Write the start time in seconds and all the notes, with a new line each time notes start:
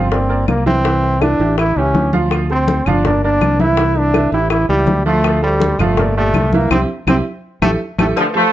Already playing: G1 C4
0.11 A#3 C4 A#4 D5, high bongo, high conga
0.29 A#3 A#4 D5, high conga
0.48 C2 A#3, high bongo, low bongo, high conga, claves
0.66 E3 C4 E4 E5, high bongo, high conga
0.84 E3 E4 E5, high bongo, high conga
1.03 high bongo, high conga
1.21 E3 D4 E4 E5, high bongo, high conga, claves
1.39 A1 E3 E4 G4, high bongo, high conga
1.58 E4, high bongo, high conga, claves
1.76 C#2 E3 C#4 E4 G4, high conga
1.94 D2, high bongo, low bongo, high conga
2.13 F3 F4 F5, high bongo, high conga
2.31 high bongo, high conga, claves
2.50 A3 C4 A4 C5, high bongo, high conga
2.68 high bongo, high conga
2.86 G1 F3 D4 F4 F5, high bongo, high conga, low conga, claves
3.05 A#3 D4 A#4 D5, high bongo, high conga, low conga
3.24 A#3 D4 A#4 D5, high conga
3.41 C2, high bongo, low bongo, high conga, claves
3.59 E3 E4 E5, high bongo, high conga
3.77 E3 E4 E5, high bongo
3.95 D4, high bongo, high conga
4.14 E3 E4 E5, high bongo, high conga, claves
4.32 A1 E3 E4 G4, high bongo, high conga
4.50 E4, high bongo, high conga, claves
4.69 C#2 E3 G3 E4 G4, high conga
4.87 D2, high bongo, low bongo, high conga
5.06 F3 A3 F4 F5, high bongo
5.24 high bongo, high conga, claves
5.42 G3 A3 A4 C5, high bongo, high conga
5.60 high bongo, high conga
5.79 G1 F3 A3 F4 F5, high bongo, high conga, low conga, claves
5.97 A#3 A#4 D5, high bongo, high conga, low conga
6.16 A#2 A3 G4 D5, high conga
6.34 C2, high bongo, low bongo, high conga, claves
6.53 E3 A#3 E4 E5, high bongo, high conga
6.70 C2 C4 E4 G4, low bongo, high conga, claves
7.07 C2 C4 E4 G4, low bongo, high conga, claves
7.62 A1 A3 E4 G4 A4, low bongo, high conga, claves
7.98 A1 A3 E4 G4 A4, low bongo, high conga, claves
8.16 D3 F3 A3 A4 C5, cowbell, high conga, claves
8.34 F3 A3 A4 C5, high conga